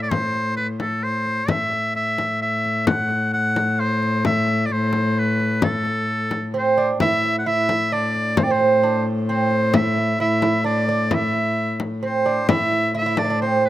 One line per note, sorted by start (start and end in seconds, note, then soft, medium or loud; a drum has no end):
0.00 1.48 A2 medium
0.00 0.13 D5 medium
0.11 0.56 C5 loud
0.11 frame drum medium
0.57 0.67 B4 medium
0.57 frame drum soft
0.80 1.05 A4 medium
0.80 frame drum medium
1.03 1.51 C5 medium
1.26 frame drum soft
1.48 7.00 A2 medium
1.48 1.95 E5 loud
1.48 frame drum medium
1.72 frame drum soft
1.95 2.38 E5 medium
1.95 frame drum soft
2.18 frame drum medium
2.42 2.84 E5 medium
2.65 frame drum soft
2.87 3.30 F#5 medium
2.87 frame drum medium
3.11 frame drum soft
3.33 3.81 F#5 loud
3.33 frame drum soft
3.56 frame drum medium
3.80 4.25 C5 medium
4.03 frame drum soft
4.25 4.67 E5 medium
4.25 frame drum medium
4.47 frame drum soft
4.66 4.74 D5 medium
4.70 5.20 C5 medium
4.70 frame drum soft
4.93 frame drum medium
5.19 5.63 B4 medium
5.40 frame drum soft
5.62 6.51 A4 medium
5.62 frame drum medium
5.85 frame drum soft
6.31 frame drum medium
6.54 6.76 C4 medium
6.58 6.89 C5 medium
6.77 7.01 D4 medium
6.77 frame drum soft
7.00 12.48 A2 medium
7.00 7.45 E4 medium
7.00 7.37 E5 loud
7.00 frame drum medium
7.24 frame drum soft
7.39 7.48 F#5 medium
7.46 7.92 E4 medium
7.46 7.95 E5 loud
7.46 frame drum soft
7.69 frame drum medium
7.92 8.39 D4 medium
7.92 8.39 D5 medium
8.15 frame drum soft
8.37 8.49 C4 medium
8.37 8.45 C5 medium
8.37 frame drum medium
8.43 8.53 D5 medium
8.50 8.84 C4 medium
8.50 9.07 C5 medium
8.60 frame drum soft
8.82 9.05 D4 medium
8.82 frame drum soft
9.29 9.76 C4 medium
9.29 9.76 C5 medium
9.51 frame drum soft
9.73 10.19 E4 medium
9.73 10.20 E5 loud
9.73 frame drum medium
9.97 frame drum soft
10.20 10.41 E4 medium
10.20 10.63 E5 medium
10.20 frame drum soft
10.42 10.64 E4 medium
10.42 frame drum medium
10.64 10.87 D4 medium
10.64 11.16 D5 medium
10.88 11.11 D4 medium
10.88 frame drum soft
11.11 11.76 E4 medium
11.11 11.82 E5 medium
11.11 frame drum medium
11.80 frame drum medium
12.03 12.27 C4 medium
12.03 12.47 C5 medium
12.25 12.49 D4 medium
12.25 frame drum soft
12.48 13.69 A2 medium
12.48 12.93 E4 medium
12.48 12.91 E5 loud
12.48 frame drum medium
12.72 frame drum soft
12.95 13.00 E4 medium
12.95 13.20 E5 loud
12.95 frame drum soft
13.02 13.05 E4 medium
13.06 13.18 E4 medium
13.17 13.24 D4 medium
13.17 13.41 D5 medium
13.17 frame drum medium
13.25 13.29 D4 medium
13.30 13.41 D4 medium
13.42 13.69 C4 medium
13.42 13.67 C5 medium
13.63 13.69 B4 medium
13.63 frame drum soft